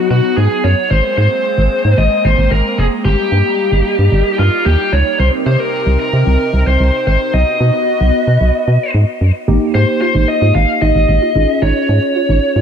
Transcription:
0.00 0.89 F#3 medium
0.00 0.89 B3 medium
0.00 0.87 D#4 medium
0.11 0.21 B2 loud
0.11 0.37 F#4 medium
0.37 0.48 G#2 loud
0.37 0.65 G#4 medium
0.64 0.75 F#2 loud
0.64 0.89 C#5 medium
0.91 1.01 G#1 loud
0.91 3.03 G#3 medium
0.91 5.16 A#3 medium
0.91 3.03 C4 medium
0.91 1.16 C5 loud
1.18 1.28 G#2 loud
1.18 2.00 C5 loud
1.58 1.68 G#1 loud
1.85 1.95 G#2 medium
1.98 2.09 G#1 loud
1.98 2.26 D#5 loud
2.25 2.35 G#1 loud
2.25 2.51 C5 medium
2.38 2.49 G#1 medium
2.52 2.62 G#1 loud
2.52 2.79 A#4 medium
2.78 2.89 F1 medium
2.78 2.86 G#4 medium
3.05 3.16 G1 loud
3.05 5.17 G3 medium
3.05 5.17 D#4 medium
3.05 4.39 G4 medium
3.32 3.43 G2 loud
3.72 3.83 G1 medium
3.99 4.09 G2 medium
4.12 4.23 G1 loud
4.39 4.50 G2 loud
4.39 4.65 F4 medium
4.66 4.77 D#2 loud
4.66 4.94 G4 medium
4.93 5.03 C#2 medium
4.93 5.19 C#5 medium
5.19 5.30 C2 loud
5.19 7.32 C3 medium
5.19 7.32 C4 medium
5.19 9.44 D#4 medium
5.19 7.32 G4 medium
5.19 7.32 A#4 medium
5.19 5.27 C5 loud
5.46 5.57 C3 loud
5.46 5.60 C5 medium
5.60 5.99 A#4 medium
5.87 5.97 C2 loud
6.00 6.67 A#4 medium
6.13 6.24 C3 medium
6.27 6.37 C2 loud
6.54 6.64 C2 loud
6.67 6.77 C2 medium
6.67 7.04 C5 medium
6.80 6.91 C2 loud
7.07 7.18 G#1 medium
7.07 7.32 C5 medium
7.34 7.44 B1 loud
7.34 9.46 B3 medium
7.34 9.46 F#4 medium
7.34 8.91 D#5 medium
7.61 7.71 B2 loud
8.01 8.11 B1 medium
8.28 8.38 B2 medium
8.41 8.51 B1 medium
8.68 8.78 B2 loud
8.94 9.05 G#2 loud
9.21 9.32 F#2 medium
9.48 9.59 G#1 loud
9.48 11.32 A#3 medium
9.48 9.62 D#4 loud
9.48 11.32 D#4 medium
9.48 11.32 G4 medium
9.75 9.85 G#2 loud
9.75 9.89 G4 medium
9.75 10.00 C5 medium
10.01 10.09 F4 medium
10.01 10.26 C5 medium
10.15 10.26 G#1 loud
10.15 10.29 D#4 medium
10.28 10.55 D#5 loud
10.42 10.52 G#2 loud
10.42 10.56 F4 medium
10.55 10.66 G#1 loud
10.55 10.81 F5 loud
10.82 10.93 G#1 medium
10.82 10.96 D#4 medium
10.82 11.65 D#5 loud
10.96 11.06 G#1 medium
11.09 11.19 G#1 loud
11.22 11.29 F4 medium
11.36 11.46 G#1 loud
11.36 12.62 C#4 medium
11.36 11.49 D#4 medium
11.36 12.62 F4 medium
11.36 12.62 G#4 medium
11.62 11.73 G#1 loud
11.62 11.76 D#4 loud
11.62 12.62 C#5 medium
11.89 12.00 G#2 loud
11.89 12.03 G#4 medium
12.16 12.23 F4 medium
12.29 12.40 G#1 medium
12.29 12.43 D#4 medium
12.56 12.62 G#2 medium
12.56 12.62 F4 medium

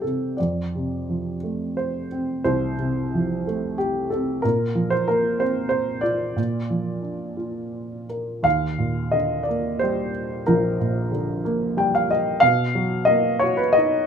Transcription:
0.00 0.04 C3 soft
0.00 0.38 C3 soft
0.00 0.39 G3 soft
0.00 0.34 D#4 soft
0.00 0.40 G4 soft
0.00 0.35 A4 medium
0.00 0.40 C5 medium
0.37 2.41 F2 soft
0.37 1.37 D5 medium
0.75 2.07 C3 soft
1.09 2.41 F3 soft
1.44 2.75 A3 soft
1.77 2.43 C5 medium
2.12 3.43 C4 soft
2.44 4.40 C2 soft
2.44 3.75 C5 medium
2.78 4.08 C3 soft
3.15 4.41 F3 soft
3.47 4.42 A3 soft
3.78 4.09 G4 medium
4.10 4.43 C4 soft
4.10 4.41 A4 medium
4.42 6.34 A#2 medium
4.42 4.93 A#4 medium
4.75 6.01 F3 soft
4.90 5.06 C5 medium
5.08 6.34 A#3 soft
5.08 5.41 A#4 medium
5.39 6.34 C4 soft
5.39 5.68 C5 medium
5.69 6.01 C5 medium
6.01 6.36 F4 soft
6.01 8.04 D5 medium
6.36 8.40 A#2 soft
6.70 8.06 F3 soft
7.02 8.40 D4 soft
7.37 8.41 F4 soft
8.09 8.44 A#4 soft
8.43 10.43 D#2 soft
8.43 9.15 F5 medium
8.78 10.10 A#2 soft
9.12 10.43 D3 soft
9.12 9.48 D#5 medium
9.43 9.80 D5 medium
9.49 10.77 A#3 soft
9.79 11.10 G3 soft
9.79 10.43 C5 medium
10.47 12.38 A#1 medium
10.47 11.40 A#4 medium
10.80 12.05 A#2 soft
11.12 12.37 D3 soft
11.45 12.39 A#3 medium
11.77 12.40 G3 medium
11.77 11.92 G5 medium
11.95 12.09 F5 medium
12.11 12.40 D#5 medium
12.40 14.07 B2 medium
12.40 13.04 F5 loud
12.75 14.07 F#3 medium
13.05 14.07 A#3 medium
13.05 13.42 D#5 medium
13.39 14.07 F#4 medium
13.39 13.58 C#5 medium
13.57 13.74 B4 medium
13.73 14.07 D#5 medium
13.78 14.07 D#4 medium

